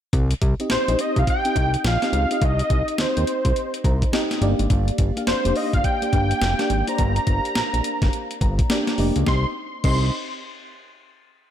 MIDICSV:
0, 0, Header, 1, 5, 480
1, 0, Start_track
1, 0, Key_signature, -3, "minor"
1, 0, Tempo, 571429
1, 108, Time_signature, 4, 2, 24, 8
1, 9664, End_track
2, 0, Start_track
2, 0, Title_t, "Analog synth lead"
2, 0, Program_c, 0, 81
2, 599, Note_on_c, 0, 72, 96
2, 847, Note_on_c, 0, 75, 91
2, 859, Note_off_c, 0, 72, 0
2, 998, Note_on_c, 0, 77, 89
2, 1010, Note_off_c, 0, 75, 0
2, 1077, Note_off_c, 0, 77, 0
2, 1091, Note_on_c, 0, 79, 123
2, 1527, Note_off_c, 0, 79, 0
2, 1572, Note_on_c, 0, 77, 102
2, 2053, Note_on_c, 0, 75, 115
2, 2066, Note_off_c, 0, 77, 0
2, 2528, Note_on_c, 0, 72, 89
2, 2541, Note_off_c, 0, 75, 0
2, 3478, Note_off_c, 0, 72, 0
2, 4432, Note_on_c, 0, 72, 94
2, 4675, Note_on_c, 0, 75, 88
2, 4688, Note_off_c, 0, 72, 0
2, 4819, Note_off_c, 0, 75, 0
2, 4824, Note_on_c, 0, 77, 85
2, 4909, Note_on_c, 0, 79, 120
2, 4921, Note_off_c, 0, 77, 0
2, 5778, Note_on_c, 0, 82, 104
2, 5791, Note_off_c, 0, 79, 0
2, 7307, Note_off_c, 0, 82, 0
2, 7791, Note_on_c, 0, 84, 98
2, 7946, Note_off_c, 0, 84, 0
2, 8272, Note_on_c, 0, 84, 93
2, 8493, Note_off_c, 0, 84, 0
2, 9664, End_track
3, 0, Start_track
3, 0, Title_t, "FM electric piano"
3, 0, Program_c, 1, 5
3, 269, Control_c, 1, 64, 127
3, 501, Note_on_c, 1, 60, 71
3, 505, Note_on_c, 1, 63, 72
3, 507, Note_on_c, 1, 67, 74
3, 510, Note_on_c, 1, 75, 75
3, 657, Note_off_c, 1, 60, 0
3, 659, Note_off_c, 1, 63, 0
3, 660, Note_off_c, 1, 67, 0
3, 662, Note_off_c, 1, 75, 0
3, 739, Note_on_c, 1, 60, 84
3, 741, Note_on_c, 1, 63, 77
3, 745, Note_on_c, 1, 67, 74
3, 749, Note_on_c, 1, 75, 97
3, 803, Note_off_c, 1, 60, 0
3, 805, Note_off_c, 1, 63, 0
3, 806, Note_off_c, 1, 67, 0
3, 808, Note_off_c, 1, 75, 0
3, 831, Note_on_c, 1, 60, 74
3, 835, Note_on_c, 1, 63, 69
3, 838, Note_on_c, 1, 67, 68
3, 842, Note_on_c, 1, 75, 89
3, 1096, Note_off_c, 1, 60, 0
3, 1098, Note_off_c, 1, 63, 0
3, 1100, Note_off_c, 1, 67, 0
3, 1102, Note_off_c, 1, 75, 0
3, 1218, Note_on_c, 1, 60, 74
3, 1222, Note_on_c, 1, 63, 63
3, 1224, Note_on_c, 1, 67, 66
3, 1230, Note_on_c, 1, 75, 76
3, 1283, Note_off_c, 1, 60, 0
3, 1285, Note_off_c, 1, 63, 0
3, 1286, Note_off_c, 1, 67, 0
3, 1289, Note_off_c, 1, 75, 0
3, 1312, Note_on_c, 1, 60, 80
3, 1316, Note_on_c, 1, 63, 71
3, 1318, Note_on_c, 1, 67, 67
3, 1322, Note_on_c, 1, 75, 83
3, 1577, Note_off_c, 1, 60, 0
3, 1579, Note_off_c, 1, 63, 0
3, 1580, Note_off_c, 1, 67, 0
3, 1582, Note_off_c, 1, 75, 0
3, 1696, Note_on_c, 1, 60, 78
3, 1702, Note_on_c, 1, 63, 70
3, 1707, Note_on_c, 1, 67, 74
3, 1710, Note_on_c, 1, 75, 85
3, 1855, Note_off_c, 1, 60, 0
3, 1858, Note_off_c, 1, 63, 0
3, 1860, Note_off_c, 1, 67, 0
3, 1862, Note_off_c, 1, 75, 0
3, 1940, Note_on_c, 1, 60, 83
3, 1944, Note_on_c, 1, 63, 79
3, 1949, Note_on_c, 1, 67, 75
3, 1953, Note_on_c, 1, 75, 98
3, 2631, Note_off_c, 1, 60, 0
3, 2633, Note_off_c, 1, 63, 0
3, 2635, Note_off_c, 1, 67, 0
3, 2637, Note_off_c, 1, 75, 0
3, 3231, Note_on_c, 1, 82, 68
3, 3452, Note_off_c, 1, 82, 0
3, 3464, Note_on_c, 1, 60, 89
3, 3468, Note_on_c, 1, 63, 91
3, 3470, Note_on_c, 1, 67, 85
3, 3471, Note_on_c, 1, 79, 75
3, 3474, Note_on_c, 1, 75, 114
3, 3656, Note_off_c, 1, 60, 0
3, 3658, Note_off_c, 1, 63, 0
3, 3659, Note_off_c, 1, 67, 0
3, 3662, Note_off_c, 1, 75, 0
3, 3692, Note_off_c, 1, 79, 0
3, 3708, Note_on_c, 1, 57, 71
3, 3710, Note_on_c, 1, 62, 78
3, 3712, Note_on_c, 1, 77, 72
3, 3714, Note_on_c, 1, 67, 86
3, 3717, Note_on_c, 1, 74, 101
3, 3719, Control_c, 1, 64, 0
3, 3761, Note_on_c, 1, 58, 91
3, 3776, Note_off_c, 1, 57, 0
3, 3884, Control_c, 1, 64, 127
3, 3933, Note_off_c, 1, 77, 0
3, 4188, Note_off_c, 1, 62, 0
3, 4191, Note_off_c, 1, 67, 0
3, 4192, Note_off_c, 1, 74, 0
3, 4214, Note_off_c, 1, 58, 0
3, 4337, Note_on_c, 1, 58, 78
3, 4338, Note_on_c, 1, 62, 64
3, 4341, Note_on_c, 1, 67, 70
3, 4347, Note_on_c, 1, 77, 82
3, 4495, Note_off_c, 1, 58, 0
3, 4496, Note_off_c, 1, 62, 0
3, 4497, Note_off_c, 1, 67, 0
3, 4500, Note_off_c, 1, 77, 0
3, 4575, Note_on_c, 1, 58, 81
3, 4578, Note_on_c, 1, 62, 77
3, 4581, Note_on_c, 1, 67, 81
3, 4586, Note_on_c, 1, 74, 88
3, 4641, Note_off_c, 1, 58, 0
3, 4643, Note_off_c, 1, 62, 0
3, 4645, Note_off_c, 1, 67, 0
3, 4647, Note_off_c, 1, 74, 0
3, 4663, Note_on_c, 1, 58, 75
3, 4669, Note_on_c, 1, 62, 69
3, 4670, Note_on_c, 1, 67, 67
3, 4674, Note_on_c, 1, 77, 82
3, 4932, Note_off_c, 1, 58, 0
3, 4935, Note_off_c, 1, 62, 0
3, 4936, Note_off_c, 1, 67, 0
3, 4938, Note_off_c, 1, 77, 0
3, 5056, Note_on_c, 1, 58, 66
3, 5058, Note_on_c, 1, 62, 65
3, 5063, Note_on_c, 1, 67, 67
3, 5065, Note_on_c, 1, 74, 75
3, 5122, Note_off_c, 1, 58, 0
3, 5123, Note_off_c, 1, 62, 0
3, 5126, Note_off_c, 1, 67, 0
3, 5126, Note_off_c, 1, 74, 0
3, 5145, Note_on_c, 1, 58, 77
3, 5150, Note_on_c, 1, 62, 69
3, 5154, Note_on_c, 1, 67, 74
3, 5156, Note_on_c, 1, 77, 82
3, 5413, Note_off_c, 1, 58, 0
3, 5416, Note_off_c, 1, 62, 0
3, 5418, Note_off_c, 1, 67, 0
3, 5419, Note_off_c, 1, 77, 0
3, 5537, Note_on_c, 1, 58, 96
3, 5539, Note_on_c, 1, 62, 85
3, 5543, Note_on_c, 1, 67, 88
3, 5546, Note_on_c, 1, 74, 100
3, 5695, Note_off_c, 1, 58, 0
3, 5696, Note_off_c, 1, 62, 0
3, 5698, Note_off_c, 1, 67, 0
3, 5700, Note_off_c, 1, 74, 0
3, 5774, Note_on_c, 1, 58, 84
3, 5777, Note_on_c, 1, 62, 82
3, 5781, Note_on_c, 1, 67, 79
3, 5784, Note_on_c, 1, 72, 75
3, 5821, Note_off_c, 1, 72, 0
3, 5838, Note_on_c, 1, 74, 92
3, 6468, Note_off_c, 1, 58, 0
3, 6470, Note_off_c, 1, 62, 0
3, 6472, Note_off_c, 1, 67, 0
3, 6500, Note_off_c, 1, 74, 0
3, 7070, Note_on_c, 1, 82, 71
3, 7292, Note_off_c, 1, 82, 0
3, 7308, Note_on_c, 1, 58, 92
3, 7310, Note_on_c, 1, 62, 86
3, 7312, Note_on_c, 1, 79, 76
3, 7314, Note_on_c, 1, 67, 86
3, 7316, Note_on_c, 1, 74, 103
3, 7499, Note_off_c, 1, 58, 0
3, 7500, Note_off_c, 1, 62, 0
3, 7502, Note_off_c, 1, 67, 0
3, 7503, Note_off_c, 1, 74, 0
3, 7533, Note_off_c, 1, 79, 0
3, 7548, Note_on_c, 1, 58, 95
3, 7549, Note_on_c, 1, 62, 96
3, 7551, Note_on_c, 1, 75, 70
3, 7552, Note_on_c, 1, 67, 86
3, 7557, Note_on_c, 1, 74, 99
3, 7773, Note_off_c, 1, 75, 0
3, 7779, Note_off_c, 1, 67, 0
3, 7787, Note_off_c, 1, 58, 0
3, 7788, Note_off_c, 1, 62, 0
3, 7789, Note_on_c, 1, 63, 66
3, 7789, Note_on_c, 1, 67, 75
3, 7790, Note_on_c, 1, 60, 78
3, 7790, Note_on_c, 1, 75, 91
3, 7792, Note_off_c, 1, 74, 0
3, 7799, Control_c, 1, 64, 0
3, 7944, Note_off_c, 1, 63, 0
3, 7944, Note_off_c, 1, 67, 0
3, 7945, Note_off_c, 1, 60, 0
3, 7945, Note_off_c, 1, 75, 0
3, 8269, Note_on_c, 1, 67, 82
3, 8270, Note_on_c, 1, 60, 87
3, 8271, Note_on_c, 1, 63, 72
3, 8272, Note_on_c, 1, 75, 96
3, 8491, Note_off_c, 1, 67, 0
3, 8492, Note_off_c, 1, 60, 0
3, 8492, Note_off_c, 1, 63, 0
3, 8493, Note_off_c, 1, 75, 0
3, 9664, End_track
4, 0, Start_track
4, 0, Title_t, "Analog synth bass"
4, 0, Program_c, 2, 38
4, 110, Note_on_c, 2, 36, 116
4, 285, Note_off_c, 2, 36, 0
4, 349, Note_on_c, 2, 36, 103
4, 459, Note_off_c, 2, 36, 0
4, 595, Note_on_c, 2, 34, 49
4, 653, Note_off_c, 2, 34, 0
4, 742, Note_on_c, 2, 34, 84
4, 806, Note_off_c, 2, 34, 0
4, 977, Note_on_c, 2, 36, 91
4, 1043, Note_off_c, 2, 36, 0
4, 1308, Note_on_c, 2, 36, 88
4, 1484, Note_off_c, 2, 36, 0
4, 1549, Note_on_c, 2, 34, 100
4, 1659, Note_off_c, 2, 34, 0
4, 1787, Note_on_c, 2, 37, 84
4, 1897, Note_off_c, 2, 37, 0
4, 2030, Note_on_c, 2, 36, 106
4, 2205, Note_off_c, 2, 36, 0
4, 2269, Note_on_c, 2, 36, 89
4, 2378, Note_off_c, 2, 36, 0
4, 2512, Note_on_c, 2, 39, 47
4, 2571, Note_off_c, 2, 39, 0
4, 2664, Note_on_c, 2, 39, 80
4, 2727, Note_off_c, 2, 39, 0
4, 2897, Note_on_c, 2, 36, 96
4, 2963, Note_off_c, 2, 36, 0
4, 3228, Note_on_c, 2, 36, 92
4, 3404, Note_off_c, 2, 36, 0
4, 3709, Note_on_c, 2, 31, 94
4, 3819, Note_off_c, 2, 31, 0
4, 3860, Note_on_c, 2, 32, 93
4, 3925, Note_off_c, 2, 32, 0
4, 3949, Note_on_c, 2, 31, 111
4, 4124, Note_off_c, 2, 31, 0
4, 4188, Note_on_c, 2, 31, 101
4, 4298, Note_off_c, 2, 31, 0
4, 4428, Note_on_c, 2, 29, 51
4, 4488, Note_off_c, 2, 29, 0
4, 4578, Note_on_c, 2, 29, 81
4, 4644, Note_off_c, 2, 29, 0
4, 4817, Note_on_c, 2, 31, 94
4, 4883, Note_off_c, 2, 31, 0
4, 5146, Note_on_c, 2, 31, 96
4, 5323, Note_off_c, 2, 31, 0
4, 5388, Note_on_c, 2, 29, 109
4, 5498, Note_off_c, 2, 29, 0
4, 5628, Note_on_c, 2, 32, 90
4, 5738, Note_off_c, 2, 32, 0
4, 5866, Note_on_c, 2, 31, 118
4, 6043, Note_off_c, 2, 31, 0
4, 6107, Note_on_c, 2, 31, 91
4, 6218, Note_off_c, 2, 31, 0
4, 6348, Note_on_c, 2, 34, 47
4, 6408, Note_off_c, 2, 34, 0
4, 6497, Note_on_c, 2, 34, 85
4, 6563, Note_off_c, 2, 34, 0
4, 6735, Note_on_c, 2, 31, 90
4, 6802, Note_off_c, 2, 31, 0
4, 7065, Note_on_c, 2, 31, 100
4, 7242, Note_off_c, 2, 31, 0
4, 7546, Note_on_c, 2, 29, 87
4, 7657, Note_off_c, 2, 29, 0
4, 7696, Note_on_c, 2, 37, 94
4, 7763, Note_off_c, 2, 37, 0
4, 7786, Note_on_c, 2, 36, 100
4, 7943, Note_off_c, 2, 36, 0
4, 8266, Note_on_c, 2, 36, 102
4, 8490, Note_off_c, 2, 36, 0
4, 9664, End_track
5, 0, Start_track
5, 0, Title_t, "Drums"
5, 109, Note_on_c, 9, 36, 104
5, 110, Note_on_c, 9, 42, 75
5, 193, Note_off_c, 9, 36, 0
5, 194, Note_off_c, 9, 42, 0
5, 257, Note_on_c, 9, 42, 55
5, 341, Note_off_c, 9, 42, 0
5, 349, Note_on_c, 9, 36, 97
5, 349, Note_on_c, 9, 42, 75
5, 433, Note_off_c, 9, 36, 0
5, 433, Note_off_c, 9, 42, 0
5, 502, Note_on_c, 9, 42, 46
5, 586, Note_off_c, 9, 42, 0
5, 586, Note_on_c, 9, 38, 113
5, 587, Note_on_c, 9, 42, 61
5, 670, Note_off_c, 9, 38, 0
5, 671, Note_off_c, 9, 42, 0
5, 742, Note_on_c, 9, 42, 57
5, 826, Note_off_c, 9, 42, 0
5, 830, Note_on_c, 9, 42, 81
5, 914, Note_off_c, 9, 42, 0
5, 977, Note_on_c, 9, 36, 85
5, 978, Note_on_c, 9, 42, 55
5, 1061, Note_off_c, 9, 36, 0
5, 1062, Note_off_c, 9, 42, 0
5, 1069, Note_on_c, 9, 36, 79
5, 1071, Note_on_c, 9, 42, 55
5, 1153, Note_off_c, 9, 36, 0
5, 1155, Note_off_c, 9, 42, 0
5, 1218, Note_on_c, 9, 42, 56
5, 1302, Note_off_c, 9, 42, 0
5, 1308, Note_on_c, 9, 36, 93
5, 1310, Note_on_c, 9, 42, 78
5, 1392, Note_off_c, 9, 36, 0
5, 1394, Note_off_c, 9, 42, 0
5, 1460, Note_on_c, 9, 42, 53
5, 1544, Note_off_c, 9, 42, 0
5, 1550, Note_on_c, 9, 38, 112
5, 1552, Note_on_c, 9, 42, 71
5, 1634, Note_off_c, 9, 38, 0
5, 1636, Note_off_c, 9, 42, 0
5, 1699, Note_on_c, 9, 38, 67
5, 1702, Note_on_c, 9, 42, 53
5, 1783, Note_off_c, 9, 38, 0
5, 1786, Note_off_c, 9, 42, 0
5, 1790, Note_on_c, 9, 42, 62
5, 1874, Note_off_c, 9, 42, 0
5, 1939, Note_on_c, 9, 42, 59
5, 2023, Note_off_c, 9, 42, 0
5, 2030, Note_on_c, 9, 36, 105
5, 2031, Note_on_c, 9, 42, 82
5, 2114, Note_off_c, 9, 36, 0
5, 2115, Note_off_c, 9, 42, 0
5, 2179, Note_on_c, 9, 42, 51
5, 2263, Note_off_c, 9, 42, 0
5, 2269, Note_on_c, 9, 36, 93
5, 2269, Note_on_c, 9, 42, 76
5, 2353, Note_off_c, 9, 36, 0
5, 2353, Note_off_c, 9, 42, 0
5, 2420, Note_on_c, 9, 42, 50
5, 2504, Note_off_c, 9, 42, 0
5, 2506, Note_on_c, 9, 38, 122
5, 2508, Note_on_c, 9, 42, 65
5, 2590, Note_off_c, 9, 38, 0
5, 2592, Note_off_c, 9, 42, 0
5, 2662, Note_on_c, 9, 42, 53
5, 2746, Note_off_c, 9, 42, 0
5, 2750, Note_on_c, 9, 42, 78
5, 2834, Note_off_c, 9, 42, 0
5, 2898, Note_on_c, 9, 36, 94
5, 2899, Note_on_c, 9, 42, 60
5, 2982, Note_off_c, 9, 36, 0
5, 2983, Note_off_c, 9, 42, 0
5, 2992, Note_on_c, 9, 42, 60
5, 3076, Note_off_c, 9, 42, 0
5, 3141, Note_on_c, 9, 42, 54
5, 3225, Note_off_c, 9, 42, 0
5, 3229, Note_on_c, 9, 36, 92
5, 3233, Note_on_c, 9, 42, 72
5, 3313, Note_off_c, 9, 36, 0
5, 3317, Note_off_c, 9, 42, 0
5, 3378, Note_on_c, 9, 36, 97
5, 3383, Note_on_c, 9, 42, 55
5, 3462, Note_off_c, 9, 36, 0
5, 3467, Note_off_c, 9, 42, 0
5, 3471, Note_on_c, 9, 38, 109
5, 3473, Note_on_c, 9, 42, 71
5, 3555, Note_off_c, 9, 38, 0
5, 3557, Note_off_c, 9, 42, 0
5, 3621, Note_on_c, 9, 38, 63
5, 3624, Note_on_c, 9, 42, 54
5, 3705, Note_off_c, 9, 38, 0
5, 3708, Note_off_c, 9, 42, 0
5, 3710, Note_on_c, 9, 42, 62
5, 3794, Note_off_c, 9, 42, 0
5, 3858, Note_on_c, 9, 42, 57
5, 3942, Note_off_c, 9, 42, 0
5, 3949, Note_on_c, 9, 36, 117
5, 3949, Note_on_c, 9, 42, 78
5, 4033, Note_off_c, 9, 36, 0
5, 4033, Note_off_c, 9, 42, 0
5, 4098, Note_on_c, 9, 42, 51
5, 4182, Note_off_c, 9, 42, 0
5, 4186, Note_on_c, 9, 42, 79
5, 4188, Note_on_c, 9, 36, 89
5, 4270, Note_off_c, 9, 42, 0
5, 4272, Note_off_c, 9, 36, 0
5, 4342, Note_on_c, 9, 42, 49
5, 4426, Note_off_c, 9, 42, 0
5, 4428, Note_on_c, 9, 38, 120
5, 4429, Note_on_c, 9, 42, 67
5, 4512, Note_off_c, 9, 38, 0
5, 4513, Note_off_c, 9, 42, 0
5, 4580, Note_on_c, 9, 42, 60
5, 4664, Note_off_c, 9, 42, 0
5, 4667, Note_on_c, 9, 46, 76
5, 4751, Note_off_c, 9, 46, 0
5, 4816, Note_on_c, 9, 36, 90
5, 4818, Note_on_c, 9, 42, 58
5, 4900, Note_off_c, 9, 36, 0
5, 4902, Note_off_c, 9, 42, 0
5, 4908, Note_on_c, 9, 36, 78
5, 4910, Note_on_c, 9, 42, 56
5, 4992, Note_off_c, 9, 36, 0
5, 4994, Note_off_c, 9, 42, 0
5, 5058, Note_on_c, 9, 42, 56
5, 5142, Note_off_c, 9, 42, 0
5, 5147, Note_on_c, 9, 36, 90
5, 5148, Note_on_c, 9, 42, 78
5, 5231, Note_off_c, 9, 36, 0
5, 5232, Note_off_c, 9, 42, 0
5, 5299, Note_on_c, 9, 42, 55
5, 5383, Note_off_c, 9, 42, 0
5, 5389, Note_on_c, 9, 38, 102
5, 5391, Note_on_c, 9, 42, 73
5, 5473, Note_off_c, 9, 38, 0
5, 5475, Note_off_c, 9, 42, 0
5, 5537, Note_on_c, 9, 38, 70
5, 5541, Note_on_c, 9, 42, 58
5, 5621, Note_off_c, 9, 38, 0
5, 5625, Note_off_c, 9, 42, 0
5, 5628, Note_on_c, 9, 42, 65
5, 5712, Note_off_c, 9, 42, 0
5, 5775, Note_on_c, 9, 42, 61
5, 5859, Note_off_c, 9, 42, 0
5, 5867, Note_on_c, 9, 36, 105
5, 5867, Note_on_c, 9, 42, 84
5, 5951, Note_off_c, 9, 36, 0
5, 5951, Note_off_c, 9, 42, 0
5, 6015, Note_on_c, 9, 42, 52
5, 6099, Note_off_c, 9, 42, 0
5, 6105, Note_on_c, 9, 42, 70
5, 6107, Note_on_c, 9, 36, 87
5, 6189, Note_off_c, 9, 42, 0
5, 6191, Note_off_c, 9, 36, 0
5, 6260, Note_on_c, 9, 42, 48
5, 6344, Note_off_c, 9, 42, 0
5, 6346, Note_on_c, 9, 38, 118
5, 6347, Note_on_c, 9, 42, 66
5, 6430, Note_off_c, 9, 38, 0
5, 6431, Note_off_c, 9, 42, 0
5, 6501, Note_on_c, 9, 42, 62
5, 6585, Note_off_c, 9, 42, 0
5, 6588, Note_on_c, 9, 42, 80
5, 6672, Note_off_c, 9, 42, 0
5, 6736, Note_on_c, 9, 36, 94
5, 6737, Note_on_c, 9, 42, 54
5, 6742, Note_on_c, 9, 38, 62
5, 6820, Note_off_c, 9, 36, 0
5, 6821, Note_off_c, 9, 42, 0
5, 6826, Note_off_c, 9, 38, 0
5, 6830, Note_on_c, 9, 42, 55
5, 6914, Note_off_c, 9, 42, 0
5, 6978, Note_on_c, 9, 42, 50
5, 7062, Note_off_c, 9, 42, 0
5, 7066, Note_on_c, 9, 36, 95
5, 7067, Note_on_c, 9, 42, 75
5, 7150, Note_off_c, 9, 36, 0
5, 7151, Note_off_c, 9, 42, 0
5, 7215, Note_on_c, 9, 36, 93
5, 7218, Note_on_c, 9, 42, 53
5, 7299, Note_off_c, 9, 36, 0
5, 7302, Note_off_c, 9, 42, 0
5, 7306, Note_on_c, 9, 38, 107
5, 7308, Note_on_c, 9, 42, 70
5, 7390, Note_off_c, 9, 38, 0
5, 7392, Note_off_c, 9, 42, 0
5, 7454, Note_on_c, 9, 38, 67
5, 7458, Note_on_c, 9, 42, 52
5, 7538, Note_off_c, 9, 38, 0
5, 7542, Note_off_c, 9, 42, 0
5, 7543, Note_on_c, 9, 46, 67
5, 7627, Note_off_c, 9, 46, 0
5, 7692, Note_on_c, 9, 42, 63
5, 7776, Note_off_c, 9, 42, 0
5, 7783, Note_on_c, 9, 38, 84
5, 7785, Note_on_c, 9, 36, 103
5, 7867, Note_off_c, 9, 38, 0
5, 7869, Note_off_c, 9, 36, 0
5, 8264, Note_on_c, 9, 49, 91
5, 8266, Note_on_c, 9, 36, 103
5, 8348, Note_off_c, 9, 49, 0
5, 8350, Note_off_c, 9, 36, 0
5, 9664, End_track
0, 0, End_of_file